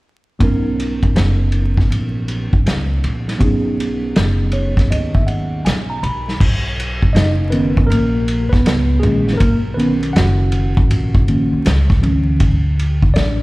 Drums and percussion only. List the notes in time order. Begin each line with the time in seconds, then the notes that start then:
0.40 kick, ride
0.80 ride
1.03 kick, ride
1.16 snare, hi-hat pedal, ride
1.52 ride
1.77 kick, snare
1.92 ride
2.28 ride
2.53 kick
2.66 snare, hi-hat pedal, ride
3.04 ride
3.28 snare, ride
3.41 kick, ride
3.80 ride
4.16 snare, hi-hat pedal, ride
4.52 ride
4.77 kick, snare, ride
4.92 ride
5.15 kick
5.28 ride
5.66 snare, hi-hat pedal, ride
6.03 ride
6.28 snare
6.40 kick, crash
6.80 ride
7.03 kick
7.16 snare, hi-hat pedal, ride
7.52 ride
7.77 kick
7.92 ride
8.28 ride
8.53 kick, snare, ride
8.66 snare, hi-hat pedal, ride
9.03 ride
9.27 snare
9.40 kick, ride
9.79 ride
10.03 ride
10.16 snare, hi-hat pedal, ride
10.52 ride
10.77 kick
10.91 ride
11.15 kick
11.28 ride
11.66 snare, hi-hat pedal, ride
11.90 kick, snare
12.03 ride
12.40 kick, ride
12.79 ride
13.02 kick
13.16 snare, hi-hat pedal, ride